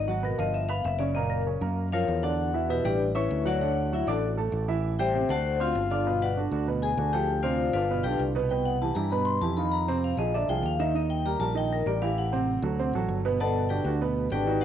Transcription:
Already playing: fingered electric bass G#1
0.08 grand piano F#3 F#4 F#5, vibraphone F#4
0.23 grand piano B2 B3 B4, vibraphone A#4
0.38 fingered electric bass G1, grand piano F3 F4 F5, vibraphone D#5
0.54 vibraphone E5
0.69 grand piano B3 B4 B5, vibraphone F5
0.84 fingered electric bass F#1, vibraphone E5
0.99 grand piano C#3 C#4 C#5, vibraphone D5
1.15 grand piano A#2 A#3 A#4, vibraphone D#5
1.30 vibraphone A#4
1.46 grand piano C#3 C#4 C#5
1.61 fingered electric bass F#2, grand piano A#3 A#4 A#5
1.92 grand piano F3 F4 F5, vibraphone F4 A#4 C#5 F5
2.08 fingered electric bass E2
2.23 grand piano D3 D4 D5, vibraphone F#4 F#5
2.54 grand piano E3 E4 E5
2.69 grand piano B2 B3 B4, vibraphone E4 G4 B4 E5
2.84 fingered electric bass A1, grand piano G3 G4 G5, vibraphone D4 G4 B4 D5
3.15 grand piano C#4 C#5 C#6, vibraphone E4 B4 C#5 E5
3.31 fingered electric bass D2
3.45 grand piano F#3 F#4 F#5, vibraphone F#4 C#5 D5 F#5
3.60 grand piano D3 D4 F#5
3.92 grand piano F#3 F#4 F#5, vibraphone E4 E5
4.07 fingered electric bass A1, grand piano D4 D5 D6, vibraphone D4 F#4 A4 D5
4.37 grand piano A3 A4 A5
4.52 fingered electric bass A1
4.68 grand piano E3 E4 E5
4.99 grand piano G3 G4 G5, vibraphone G4 C5 E5 G5
5.14 grand piano C3 C4 C5
5.29 fingered electric bass D2, grand piano A3 A4 A5, vibraphone F#4 C5 D5 F#5
5.60 grand piano C4 C5 C6, vibraphone F4 F5
5.75 fingered electric bass G1
5.91 grand piano D3 D4 D5, vibraphone F4 F5
6.06 grand piano B2 B3 B4
6.22 vibraphone F#4 B4 D5 F#5
6.37 grand piano D3 D4 F#4
6.51 fingered electric bass D2, grand piano D3 D4 F#4
6.67 grand piano B2 B3 B4
6.82 vibraphone G#4 G#5
6.97 fingered electric bass D2, grand piano D3 D4 F#4
7.13 grand piano F3 F4 A4, vibraphone G4 G5
7.42 grand piano C3 C4 C5, vibraphone F4 C5 D5 F5
7.73 fingered electric bass G1, grand piano D3 D4 F4, vibraphone F4 B4 D5 F5
7.90 grand piano B2 B3 B4
8.03 fingered electric bass B1, grand piano D3 D4 F4, vibraphone G4 B4 D5 G5
8.19 fingered electric bass C2
8.35 grand piano B2 B3 B4
8.50 grand piano B2 B3 B4, vibraphone G5
8.65 vibraphone F#5
8.81 grand piano E3 E4 G4, vibraphone A5
8.95 fingered electric bass G2, grand piano E3 E4 G4, vibraphone A#5
9.11 grand piano B2 B3 B4, vibraphone B5
9.25 vibraphone C6
9.41 fingered electric bass F2, grand piano E3 E4 G4, vibraphone A5
9.57 grand piano D#3 D#4 F4, vibraphone B5
9.71 vibraphone A#5
9.88 grand piano C3 C4 C5
10.04 vibraphone F5
10.17 fingered electric bass A#1, grand piano F3 F4 G#4, vibraphone D#5
10.34 grand piano D3 D4 D5, vibraphone E5
10.48 fingered electric bass C2, grand piano F3 F4 G#4, vibraphone G5
10.63 fingered electric bass D#2, vibraphone F5
10.79 grand piano D#3 D#4 D#5, vibraphone E5
10.95 grand piano D#3 D#4 D#5, vibraphone D#5
11.10 vibraphone G5
11.25 grand piano G3 G4 A#4, vibraphone A#5
11.39 fingered electric bass A#1, grand piano G3 G4 A#4, vibraphone A5
11.55 grand piano D#3 D#4 D#5, vibraphone G5
11.73 vibraphone A#4
11.86 fingered electric bass A1, grand piano G3 G4 A#4, vibraphone D5
12.02 grand piano E3 E4 G4, vibraphone F5
12.18 vibraphone F#5
12.32 grand piano C3 C4 C5
12.62 fingered electric bass D2, grand piano F#3 F#4 A4
12.79 grand piano C3 C4 C5
12.93 fingered electric bass A1, grand piano F#3 F#4 A4
13.08 fingered electric bass G1
13.25 grand piano B2 B3 B4
13.40 grand piano B2 B3 B4, vibraphone A4 D5 F#5 A5
13.69 grand piano D3 D4 F#4, vibraphone G4 B4 D5 G5
13.84 fingered electric bass D2, grand piano D3 D4 F#4
14.01 grand piano B2 B3 B4
14.30 fingered electric bass G#1, grand piano D3 D4 F#4, vibraphone G4 B4 D5 G5
14.47 grand piano D#3 D#4 F#4
14.61 vibraphone F#4 C5 F#5

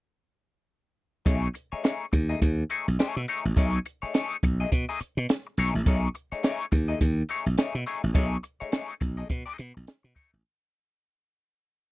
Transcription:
1.25 slap bass B1, clean electric guitar A3 D#4 G#4 C#5, kick, closed hi-hat
1.54 muted clean electric guitar stroke, closed hi-hat
1.72 clean electric guitar A3 D#4 G#4 C#5, muted slap bass stroke
1.83 clean electric guitar A3 D#4 G#4 C#5, snare, closed hi-hat
2.12 slap bass D#2, muted clean electric guitar stroke, kick, closed hi-hat
2.29 clean electric guitar A3 D#4 G#4 D#5
2.42 slap bass D#2, kick, closed hi-hat
2.70 clean electric guitar A3 D#4 G#4 C#5, closed hi-hat
2.88 slap bass B1, muted clean electric guitar stroke
2.99 clean electric guitar A3 D#4 G#4 C#5, snare, closed hi-hat
3.16 slap bass B2, muted clean electric guitar stroke
3.28 clean electric guitar A3 D#4 G#4 C#5, closed hi-hat
3.45 slap bass A1, muted clean electric guitar stroke
3.57 slap bass B1, clean electric guitar A3 D#4 G#4 C#5, kick, closed hi-hat
3.86 muted clean electric guitar stroke, closed hi-hat
4.02 clean electric guitar A3 D#4 G#4 C#5, muted slap bass stroke
4.14 clean electric guitar A3 D#4 G#4 C#5, snare, closed hi-hat
4.43 slap bass B1, muted clean electric guitar stroke, kick, closed hi-hat
4.60 clean electric guitar A3 D#4 G#4 D#5
4.72 slap bass B2, kick, closed hi-hat
4.89 clean electric guitar A3 D#4 G#4 D#5
5.00 muted clean electric guitar stroke, muted slap bass stroke, closed hi-hat
5.17 slap bass B2, muted clean electric guitar stroke
5.29 snare, closed hi-hat
5.47 muted clean electric guitar stroke
5.58 slap bass B1, clean electric guitar A3 D#4 G#4 C#5, closed hi-hat
5.75 slap bass A1, muted clean electric guitar stroke
5.86 slap bass B1, clean electric guitar A3 D#4 G#4 C#5, kick, closed hi-hat
6.15 muted clean electric guitar stroke, closed hi-hat
6.32 clean electric guitar A3 D#4 G#4 C#5, muted slap bass stroke, closed hi-hat
6.43 clean electric guitar A3 D#4 G#4 C#5, snare, closed hi-hat
6.72 slap bass D#2, muted clean electric guitar stroke, kick, closed hi-hat
6.88 clean electric guitar A3 D#4 G#4 D#5
7.01 slap bass D#2, kick, closed hi-hat
7.29 clean electric guitar A3 D#4 G#4 C#5, closed hi-hat
7.46 slap bass B1, muted clean electric guitar stroke
7.58 clean electric guitar A3 D#4 G#4 C#5, snare, closed hi-hat
7.75 slap bass B2, muted clean electric guitar stroke
7.86 clean electric guitar A3 D#4 G#4 C#5, closed hi-hat
8.03 slap bass A1, muted clean electric guitar stroke
8.14 slap bass B1, clean electric guitar A3 D#4 G#4 C#5, kick, closed hi-hat
8.43 muted clean electric guitar stroke, closed hi-hat
8.60 clean electric guitar A3 D#4 G#4 C#5, muted slap bass stroke, closed hi-hat
8.71 clean electric guitar A3 D#4 G#4 C#5, snare, closed hi-hat
8.90 closed hi-hat
9.01 slap bass B1, muted clean electric guitar stroke, kick, closed hi-hat
9.17 clean electric guitar A3 D#4 G#4 D#5
9.29 slap bass B2, muted clean electric guitar stroke, kick, closed hi-hat
9.46 clean electric guitar A3 D#4 G#4 D#5
9.58 slap bass B2, muted clean electric guitar stroke, closed hi-hat
9.74 slap bass B1, muted clean electric guitar stroke
9.87 snare, closed hi-hat
10.03 slap bass B2, muted clean electric guitar stroke
10.15 clean electric guitar A3 D#4 G#4 C#5, kick, closed hi-hat
10.32 slap bass A1, muted clean electric guitar stroke

